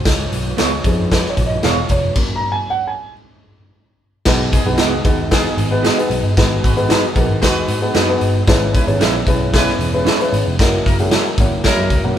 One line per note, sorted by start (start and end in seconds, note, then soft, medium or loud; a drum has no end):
0.05 0.25 C#2 loud
0.05 2.15 F4 medium
0.05 2.15 B4 medium
0.05 2.15 C#5 medium
0.05 kick loud
0.05 snare loud
0.05 closed hi-hat medium
0.32 0.52 B1 medium
0.32 closed hi-hat medium
0.57 0.78 C#2 medium
0.57 0.69 B3 medium
0.57 0.70 F4 medium
0.57 0.70 G#4 medium
0.57 0.70 C#5 medium
0.57 snare loud
0.57 closed hi-hat medium
0.84 1.24 F2 loud
0.84 1.60 F3 medium
0.84 1.60 B3 medium
0.84 1.61 D#4 medium
0.84 1.13 G#4 medium
0.84 kick loud
0.84 closed hi-hat medium
1.12 1.28 B4 medium
1.12 kick medium
1.12 snare loud
1.12 closed hi-hat medium
1.25 snare soft
1.30 1.47 C#5 loud
1.37 1.56 A#1 medium
1.37 kick medium
1.37 closed hi-hat medium
1.46 1.62 D#5 medium
1.63 1.83 E1 loud
1.63 1.75 B3 medium
1.63 1.76 F4 loud
1.63 1.76 G#4 medium
1.63 1.76 C#5 medium
1.63 1.91 F5 loud
1.63 snare loud
1.63 closed hi-hat medium
1.89 2.09 F1 medium
1.89 2.31 C#5 loud
1.89 kick medium
1.89 closed hi-hat medium
2.16 2.91 F#3 medium
2.16 2.91 A#3 medium
2.16 2.92 C#4 medium
2.16 kick loud
2.16 crash medium
2.36 2.53 A#5 loud
2.52 2.70 G#5 loud
2.70 2.88 F#5 loud
2.88 3.12 G#5 medium
4.25 4.56 B1 loud
4.25 5.02 B2 medium
4.25 8.44 B3 medium
4.25 4.58 B3 medium
4.25 6.35 D#4 medium
4.25 4.58 D#4 medium
4.25 4.58 F#4 medium
4.25 8.44 G#4 medium
4.25 4.58 G#4 medium
4.25 4.58 B4 medium
4.25 kick loud
4.25 snare loud
4.25 crash loud
4.53 4.64 D#3 medium
4.53 4.64 B3 medium
4.53 4.65 G#4 loud
4.53 kick medium
4.53 closed hi-hat medium
4.65 4.75 B1 medium
4.65 4.97 B3 medium
4.65 4.97 D#4 medium
4.65 4.97 F#4 medium
4.65 4.97 G#4 medium
4.65 4.97 B4 loud
4.78 4.98 C#2 medium
4.78 4.91 B3 medium
4.78 4.91 F#4 medium
4.78 4.92 G#4 medium
4.78 4.92 D#5 medium
4.78 snare loud
4.78 closed hi-hat medium
5.05 5.44 D#2 loud
5.05 5.26 B3 medium
5.05 5.26 D#4 medium
5.05 5.26 F#4 medium
5.05 5.26 G#4 medium
5.05 5.26 B4 loud
5.05 kick loud
5.05 closed hi-hat medium
5.31 5.70 D#3 loud
5.31 5.63 B3 medium
5.31 5.70 B3 loud
5.31 5.63 D#4 medium
5.31 5.63 F#4 medium
5.31 5.63 G#4 medium
5.31 5.70 G#4 loud
5.31 5.63 B4 medium
5.31 kick medium
5.31 snare loud
5.31 closed hi-hat medium
5.45 snare soft
5.57 5.87 G#1 medium
5.57 closed hi-hat medium
5.71 5.92 B3 medium
5.71 5.92 D#4 medium
5.71 5.92 F#4 medium
5.71 5.92 G#4 medium
5.71 5.92 B4 loud
5.83 5.96 B3 medium
5.83 5.96 F#4 medium
5.83 5.96 G#4 loud
5.83 5.97 D#5 loud
5.83 snare loud
5.83 closed hi-hat medium
5.98 6.29 B3 medium
5.98 6.29 D#4 medium
5.98 6.29 F#4 medium
5.98 6.29 G#4 medium
5.98 6.29 B4 loud
5.98 closed hi-hat medium
6.10 6.20 B1 medium
6.10 closed hi-hat medium
6.23 6.33 G1 medium
6.37 6.57 G#1 loud
6.37 7.12 G#2 medium
6.37 6.68 B3 medium
6.37 6.68 D#4 medium
6.37 6.68 F#4 medium
6.37 8.46 F#4 medium
6.37 6.68 G#4 medium
6.37 6.69 B4 loud
6.37 kick loud
6.37 snare loud
6.37 closed hi-hat medium
6.63 6.94 G#1 medium
6.63 6.75 G#3 medium
6.63 6.74 F#4 medium
6.63 6.75 B4 medium
6.63 kick medium
6.63 closed hi-hat medium
6.76 7.08 B3 medium
6.76 7.08 D#4 medium
6.76 7.08 F#4 medium
6.76 7.08 G#4 medium
6.76 7.08 B4 loud
6.76 closed hi-hat soft
6.89 7.01 D#4 medium
6.89 7.02 F#4 medium
6.89 7.02 B4 medium
6.89 7.02 D#5 medium
6.89 snare loud
6.89 closed hi-hat medium
7.16 7.26 A#1 loud
7.16 7.37 B3 medium
7.16 7.37 D#4 medium
7.16 7.37 F#4 medium
7.16 7.37 G#4 medium
7.16 7.37 A#4 loud
7.16 kick loud
7.16 closed hi-hat medium
7.29 7.39 G#1 medium
7.41 7.62 D#2 loud
7.41 7.80 G#3 loud
7.41 7.74 B3 medium
7.41 7.74 D#4 medium
7.41 7.80 F#4 loud
7.41 7.74 F#4 medium
7.41 7.74 G#4 medium
7.41 7.80 B4 loud
7.41 7.74 B4 medium
7.41 kick medium
7.41 snare loud
7.41 closed hi-hat medium
7.68 7.88 G#2 medium
7.68 closed hi-hat medium
7.82 8.03 B3 medium
7.82 8.03 D#4 medium
7.82 8.03 F#4 medium
7.82 8.03 G#4 medium
7.82 8.03 B4 loud
7.94 8.15 F#2 loud
7.94 8.06 D#4 medium
7.94 8.07 F#4 medium
7.94 8.07 B4 medium
7.94 8.07 D#5 medium
7.94 snare loud
7.94 closed hi-hat medium
8.09 8.40 B3 loud
8.09 8.40 D#4 medium
8.09 8.40 F#4 medium
8.09 8.40 G#4 medium
8.09 8.40 B4 loud
8.21 8.41 G1 medium
8.21 closed hi-hat medium
8.47 8.77 G#1 loud
8.47 9.23 G#2 medium
8.47 8.79 B3 loud
8.47 10.57 B3 medium
8.47 8.79 C#4 medium
8.47 10.57 C#4 medium
8.47 8.79 E4 medium
8.47 10.57 E4 medium
8.47 8.79 G#4 medium
8.47 8.79 B4 loud
8.47 kick loud
8.47 snare loud
8.47 closed hi-hat medium
8.73 8.85 G#3 medium
8.73 8.85 E4 medium
8.73 8.85 B4 loud
8.73 kick loud
8.73 closed hi-hat medium
8.87 8.97 G#1 medium
8.87 9.18 B3 medium
8.87 9.19 C#4 medium
8.87 9.19 E4 medium
8.87 9.19 G#4 medium
8.87 9.19 C#5 loud
8.87 closed hi-hat soft
9.00 9.21 A#1 loud
9.00 9.12 C#4 medium
9.00 9.13 G#4 loud
9.00 9.13 B4 loud
9.00 9.13 E5 loud
9.00 snare loud
9.00 closed hi-hat medium
9.27 9.66 B1 medium
9.27 9.48 B3 medium
9.27 9.48 C#4 medium
9.27 9.48 E4 medium
9.27 9.48 G#4 medium
9.27 9.48 B4 loud
9.27 kick loud
9.27 closed hi-hat medium
9.54 9.91 G#3 loud
9.54 9.85 B3 medium
9.54 9.85 C#4 medium
9.54 9.85 E4 medium
9.54 9.91 E4 loud
9.54 9.85 G#4 medium
9.54 9.85 B4 loud
9.54 9.91 B4 loud
9.54 kick medium
9.54 snare loud
9.54 closed hi-hat loud
9.68 snare soft
9.79 10.09 E1 medium
9.79 closed hi-hat medium
9.94 10.14 B3 medium
9.94 10.14 C#4 medium
9.94 10.14 E4 medium
9.94 10.14 G#4 medium
9.94 10.14 B4 loud
10.05 10.17 C#4 medium
10.05 10.18 G#4 loud
10.05 10.18 B4 medium
10.05 10.18 E5 medium
10.05 snare loud
10.05 closed hi-hat medium
10.20 10.51 B3 loud
10.20 10.51 C#4 medium
10.20 10.51 E4 medium
10.20 10.51 G#4 medium
10.20 10.51 B4 loud
10.20 closed hi-hat medium
10.33 10.42 G#1 medium
10.33 closed hi-hat medium
10.46 10.56 F1 medium
10.59 10.79 F#1 medium
10.59 12.18 F#3 medium
10.59 10.90 A#3 medium
10.59 10.90 C#4 medium
10.59 10.91 E4 medium
10.59 12.18 E4 medium
10.59 10.91 F#4 medium
10.59 10.91 A#4 loud
10.59 12.18 A#4 medium
10.59 kick loud
10.59 snare loud
10.59 closed hi-hat medium
10.84 11.15 F#1 medium
10.84 10.96 F#3 medium
10.84 10.96 E4 medium
10.84 10.96 A#4 loud
10.84 kick medium
10.84 closed hi-hat medium
10.99 11.30 A#3 medium
10.99 11.30 C#4 medium
10.99 11.30 E4 medium
10.99 11.30 F#4 medium
10.99 11.30 G#4 loud
10.99 closed hi-hat medium
11.11 11.23 C#4 medium
11.11 11.23 F#4 medium
11.11 11.24 A#4 medium
11.11 11.24 E5 medium
11.11 snare loud
11.11 closed hi-hat medium
11.38 11.48 G#1 loud
11.38 11.60 A#3 medium
11.38 11.60 C#4 medium
11.38 11.60 E4 medium
11.38 11.60 F#4 medium
11.38 11.60 C#5 loud
11.38 kick loud
11.38 closed hi-hat medium
11.51 11.61 F#1 medium
11.64 12.02 F#3 medium
11.64 11.96 A#3 medium
11.64 11.96 C#4 medium
11.64 12.02 E4 loud
11.64 11.96 E4 medium
11.64 11.96 F#4 medium
11.64 12.02 A#4 loud
11.64 11.96 C#5 loud
11.64 kick medium
11.64 snare loud
11.64 closed hi-hat medium
11.77 11.87 F#2 loud
11.90 12.00 C#2 loud
11.90 kick loud
11.90 closed hi-hat medium
12.04 12.13 B1 medium
12.04 12.18 A#3 medium
12.04 12.18 C#4 medium
12.04 12.18 E4 medium
12.04 12.18 F#4 medium
12.04 12.18 A#4 loud